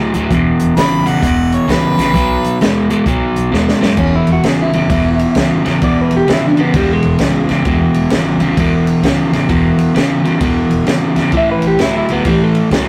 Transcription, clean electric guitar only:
3.99 C#4
4.16 E4
4.32 F#4
4.47 G#4
4.62 E4
5.84 D5
6.01 B4
6.17 G4
6.33 E4
6.47 D4
6.60 B3
6.76 G3
6.93 G#3
11.37 E5
11.51 B4
11.67 G4
11.81 E4
11.97 E4
12.12 B3
12.27 G3
12.44 A3

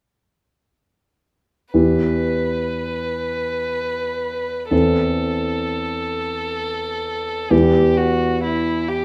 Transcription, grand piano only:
1.74 E2 B3 E4 G4
4.71 E2 C4 E4 A4
7.51 E2 B3 E4 G4

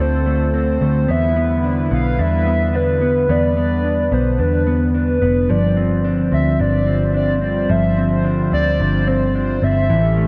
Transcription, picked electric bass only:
0.00 D2
0.81 D2
1.09 E2
1.92 B1
2.19 E2
3.29 E2
4.12 B1
4.40 E2
5.22 F1
5.50 G1
6.32 D2
6.60 G1
7.70 G1
8.53 D2
8.80 G1
9.62 G1
9.90 A1

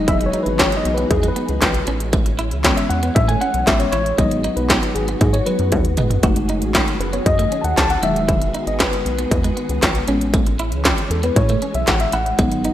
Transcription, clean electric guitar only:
0.08 E4
0.21 muted clean electric guitar stroke
0.34 D#4
0.59 C#4
0.72 muted clean electric guitar stroke
0.97 B3
1.11 muted clean electric guitar stroke
1.23 G#3
1.36 B3
1.88 C#4
2.14 A3
2.26 muted clean electric guitar stroke
2.39 E4
2.65 C#4
2.77 muted clean electric guitar stroke
3.03 B3
3.16 muted clean electric guitar stroke
3.29 A3
3.41 C#4
3.93 E4
4.19 G#3
4.32 muted clean electric guitar stroke
4.44 D#4
4.70 C#4
4.83 muted clean electric guitar stroke
5.09 B3
5.21 muted clean electric guitar stroke
5.34 G#3
5.47 F#3
5.98 G#3
6.24 F#4
6.37 muted clean electric guitar stroke
6.50 D#4
6.75 C#4
6.88 muted clean electric guitar stroke
7.13 B3
7.26 muted clean electric guitar stroke
7.39 A3
7.52 C#4
8.03 D#4
8.28 E4
8.42 muted clean electric guitar stroke
8.55 D#4
8.80 C#4
8.93 muted clean electric guitar stroke
9.19 B3
9.32 muted clean electric guitar stroke
9.44 G#3
9.57 B3
10.08 C#4
10.34 A3
10.47 muted clean electric guitar stroke
10.60 E4
10.85 C#4
10.98 muted clean electric guitar stroke
11.24 B3
11.37 muted clean electric guitar stroke
11.50 A3
11.62 C#4
12.13 E4
12.39 G#3
12.52 muted clean electric guitar stroke
12.65 D#4

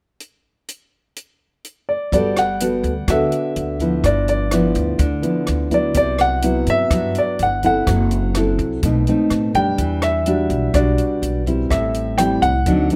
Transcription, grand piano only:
1.89 D5
2.13 D5
2.39 F#5
3.10 E5
4.06 D5
4.29 D5
5.74 D5
5.97 D5
6.21 F#5
6.70 E5
7.18 D5
7.43 F#5
7.66 F#5
9.55 G5
10.03 E5
10.75 D5
11.71 E5
12.18 G5
12.42 F#5

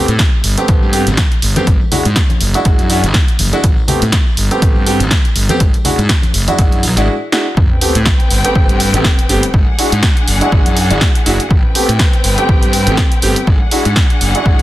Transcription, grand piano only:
0.58 A3 B3 C4 G4
0.68 B3 C4
0.93 A3 B3 C4 G4
1.56 A3 B3 C4 G4
1.91 G#3 D4 E4 F#4
2.54 G#3 D4 E4 F#4
2.66 F#4
2.90 G#3 D4 E4 F#4
3.52 G#3 D4 E4 F#4
3.88 A3 B3 C4 G4
4.51 A3 B3 C4 G4
4.62 A3 B3 C4
4.86 A3 B3 C4 G4
5.49 A3 B3 C4 G4
5.85 G#3 D4 E4 F#4
6.48 G#3 D4 E4 F#4
6.59 G#3 D4 E4 F#4
6.97 G#3 D4 E4 F#4
7.32 G#3 D4 E4 F#4
7.81 A3 B3 C4 G4
8.44 A3 B3 C4 G4
8.55 A3 B3 C4 G4
8.94 A3 B3 C4 G4
9.29 A3 B3 C4 G4
9.79 G#3 D4 E4 F#4
10.41 G#3 D4 E4 F#4
10.52 G#3
10.90 G#3 D4 E4 F#4
11.25 G#3 D4 E4 F#4
11.75 A3 B3 C4 G4
12.38 A3 B3 C4 G4
12.49 A3 B3 C4 G4
12.87 A3 B3 C4 G4
13.22 A3 B3 C4 G4
13.72 G#3 D4 E4 F#4
14.35 G#3 D4 E4 F#4
14.46 G#3 D4 E4 F#4

